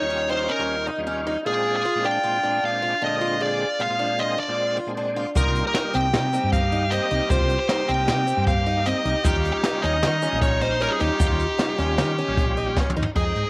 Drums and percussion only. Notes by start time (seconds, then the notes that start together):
5.35 kick, closed hi-hat, shaker
5.55 closed hi-hat
5.74 snare, closed hi-hat
5.94 closed hi-hat
6.14 snare, closed hi-hat
6.33 closed hi-hat, shaker
6.53 kick, closed hi-hat, shaker
6.72 closed hi-hat
6.91 closed hi-hat
7.11 closed hi-hat
7.30 kick, closed hi-hat, shaker
7.49 closed hi-hat
7.69 snare, closed hi-hat
7.88 closed hi-hat
8.08 snare, closed hi-hat
8.28 closed hi-hat, shaker
8.47 kick, closed hi-hat, shaker
8.66 closed hi-hat
8.86 closed hi-hat
9.05 closed hi-hat
9.24 kick, closed hi-hat, shaker
9.45 closed hi-hat
9.64 snare, closed hi-hat
9.84 closed hi-hat
10.03 snare, closed hi-hat
10.22 closed hi-hat, shaker
10.42 kick, closed hi-hat, shaker
10.61 closed hi-hat
10.81 closed hi-hat
11.01 closed hi-hat
11.20 kick, closed hi-hat, shaker
11.39 closed hi-hat, shaker
11.59 snare, closed hi-hat, shaker
11.79 snare, closed hi-hat
11.98 snare, closed hi-hat, shaker
12.18 closed hi-hat
12.37 kick, closed hi-hat
12.57 closed hi-hat
12.77 kick, snare
12.90 mid tom
13.02 floor tom
13.16 kick, closed hi-hat
13.35 closed hi-hat